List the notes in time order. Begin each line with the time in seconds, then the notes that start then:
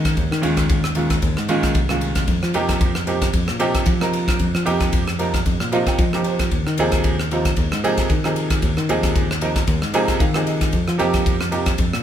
Already playing: A#2 D#3 G#3 C#4 D#4
0.05 kick, cross-stick, ride
0.17 D#2, kick, ride
0.31 D#3, cross-stick
0.41 D#2 A#2 D#3 G#3 C#4 F4, ride
0.57 kick, cross-stick, ride
0.69 kick, ride
0.84 cross-stick
0.95 A#2 D#3 G#3 C#4 F4, ride
1.10 kick, cross-stick, ride
1.22 D#2 C#4 G#4, kick, ride
1.37 G#2, cross-stick
1.49 A#2 D#3 G#3 C#4 F4, ride
1.63 muted fingered electric bass stroke, kick, cross-stick, ride
1.75 C2, kick, ride
1.89 A#2 D#3 G#3 C#4 F4, cross-stick
2.01 ride
2.15 kick, cross-stick, ride
2.28 F2, kick, ride
2.43 F3, cross-stick
2.54 F2 C3 F3 A#3 D#4 G4, ride
2.69 kick, cross-stick, ride
2.81 kick, ride
2.95 cross-stick
3.07 C3 F3 A#3 D#4 G4, ride
3.22 kick, cross-stick, ride
3.33 F2 D#4 G4, kick, ride
3.48 A#2, cross-stick
3.59 C3 F3 A#3 D#4 G4, ride
3.74 muted fingered electric bass stroke, kick, cross-stick, ride
3.86 F3, kick, ride
4.01 C3 F3 A#3 D#4 A#4, cross-stick
4.13 ride
4.28 kick, cross-stick, ride
4.39 F2, kick, ride
4.55 F3, cross-stick
4.65 F2 C3 F3 A#3 D#4 G4, ride
4.80 kick, cross-stick, ride
4.93 kick, ride
5.08 cross-stick
5.19 C3 F3 A#3 D#4 A#4, ride
5.34 kick, cross-stick, ride
5.46 F2 D#4 G4, kick, ride
5.60 A#2, cross-stick
5.72 C3 F3 A#3 D#4 F4 A#5, ride
5.86 G5, muted fingered electric bass stroke, kick, cross-stick, ride
5.99 F3 D#5, kick, ride
6.13 C3 F3 A#3 D#4 G4, cross-stick
6.24 C5, ride
6.39 kick, cross-stick, ride
6.51 D#2, kick, ride
6.67 D#3, cross-stick
6.78 D#2 C3 F3 A#3 D#4 G#4, ride
6.92 kick, cross-stick, ride
7.04 kick, ride
7.20 cross-stick
7.31 C3 F3 A#3 D#4 F4, ride
7.45 kick, cross-stick, ride
7.56 D#2 D#4 G#4, kick, ride
7.72 G#2, cross-stick
7.84 C3 F3 A#3 D#4 G#4, ride
7.97 muted fingered electric bass stroke, kick, cross-stick, ride
8.10 D#3, kick, ride
8.24 C3 F3 A#3 D#4 G#4, cross-stick
8.36 ride
8.50 kick, cross-stick, ride
8.62 D#2, kick, ride
8.77 D#3, cross-stick
8.89 D#2 C3 F3 A#3 D#4 G#4, ride
9.03 kick, cross-stick, ride
9.16 kick, ride
9.31 cross-stick
9.41 C3 F3 A#3 D#4 A#4, ride
9.56 kick, cross-stick, ride
9.67 D#2 D#4 A#4, kick, ride
9.82 G#2, cross-stick
9.94 C3 F3 A#3 D#4 G#4 G#5, ride
10.08 kick, cross-stick, ride
10.20 D#3 F5, kick, ride
10.34 C3 F3 A#3 D#4 G#4, cross-stick
10.47 D#5, ride
10.61 kick, cross-stick, ride
10.72 F2, kick, ride
10.88 F3, cross-stick
10.98 F2 C3 F3 A#3 D#4 G4, ride
11.14 kick, cross-stick, ride
11.26 kick, ride
11.41 cross-stick
11.51 C3 F3 A#3 D#4 G4, ride
11.66 kick, cross-stick, ride
11.78 F2 D#4 A4, kick, ride
11.93 A#2, cross-stick